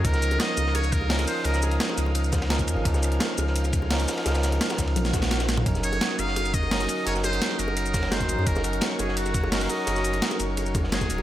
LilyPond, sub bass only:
\new Staff \with { instrumentName = "Sub bass" } { \clef bass \time 4/4 \key ges \major \tempo 4 = 171 des,4 r8 des,2 r8 | des,4 r8 des,2 f,16 aes,,16 | des,4 r8 des,2 r8 | des,4 r8 des,8 bes,,2 |
ges,,4 r8 ges,,2 r8 | ges,,4 r8 ges,,2 bes,,16 ges,16 | ges,,4 r8 ges,,2 r8 | ges,,4 r8 ges,,2 ees,,8 | }